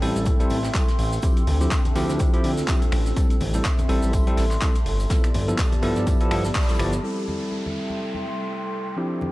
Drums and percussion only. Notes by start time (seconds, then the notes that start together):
0.02 open hi-hat, tambourine
0.16 muted conga, high conga, maracas
0.25 kick, closed hi-hat, tambourine, maracas
0.40 closed hi-hat, high conga, maracas
0.50 open hi-hat, tambourine
0.64 snare, clap, maracas
0.74 kick, snare, clap, closed hi-hat, tambourine, maracas
0.88 snare, closed hi-hat, maracas
0.99 open hi-hat, tambourine
1.13 maracas
1.22 kick, closed hi-hat, tambourine, maracas
1.37 closed hi-hat, maracas
1.47 open hi-hat, tambourine, muted conga, low conga
1.61 maracas
1.71 kick, snare, clap, closed hi-hat, tambourine, muted conga, maracas
1.85 closed hi-hat, low conga, maracas
1.96 open hi-hat, tambourine
2.09 snare, muted conga, high conga, maracas
2.19 kick, closed hi-hat, tambourine, maracas
2.34 closed hi-hat, maracas
2.44 open hi-hat, tambourine
2.57 snare, maracas
2.68 kick, snare, clap, closed hi-hat, tambourine, maracas
2.82 closed hi-hat, high conga, maracas
2.92 finger snap, open hi-hat, tambourine
3.06 snare, maracas
3.16 kick, closed hi-hat, tambourine, maracas
3.30 closed hi-hat, maracas
3.40 open hi-hat, tambourine, muted conga, low conga
3.54 closed hi-hat, maracas
3.65 kick, snare, clap, closed hi-hat, tambourine, muted conga, maracas
3.78 closed hi-hat, low conga, maracas
3.89 open hi-hat, tambourine
4.02 muted conga, high conga, maracas
4.13 kick, closed hi-hat, tambourine, maracas
4.27 closed hi-hat, high conga, maracas
4.37 snare, open hi-hat, tambourine
4.51 clap, closed hi-hat, maracas
4.61 kick, clap, closed hi-hat, tambourine, maracas
4.75 closed hi-hat, maracas
4.86 closed hi-hat, open hi-hat
5.00 tambourine, maracas
5.10 kick, snare, closed hi-hat, tambourine, maracas
5.24 finger snap, closed hi-hat, maracas
5.34 open hi-hat, tambourine, muted conga, low conga
5.48 closed hi-hat, maracas
5.58 kick, snare, clap, closed hi-hat, tambourine, muted conga, maracas
5.72 closed hi-hat, low conga, maracas
5.82 open hi-hat, tambourine
5.96 snare, closed hi-hat, muted conga, high conga, maracas
6.07 kick, closed hi-hat, tambourine, maracas
6.20 closed hi-hat, maracas
6.31 finger snap, open hi-hat, tambourine, high conga
6.44 snare, maracas
6.54 kick, snare, clap, closed hi-hat, tambourine, maracas
6.61 snare, tambourine
6.68 snare, closed hi-hat, tambourine, high conga, maracas
6.73 snare, tambourine
6.79 finger snap, open hi-hat, tambourine
6.93 snare, closed hi-hat, maracas
7.28 muted conga, low conga
7.52 muted conga
7.66 low conga
7.90 muted conga, high conga
8.15 high conga
9.21 muted conga, low conga